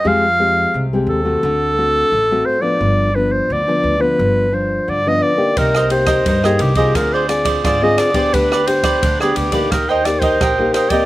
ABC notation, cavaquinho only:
X:1
M:4/4
L:1/16
Q:1/4=87
K:Gphr
V:1 name="Cavaquinho"
z16 | z16 | [EBce] [Bce] z [Bce] [EBce] [Bce]2 [Bce] [FAcd] [Acd] z [Acd] [FAcd]2 [FAcd] [Acd] | [DG=Bd] [GBd] z [GBd] [DGBd] [GBd]2 [GBd] [G_Beg] [Beg] z [Beg] [GBeg]2 [GBeg] [Beg] |]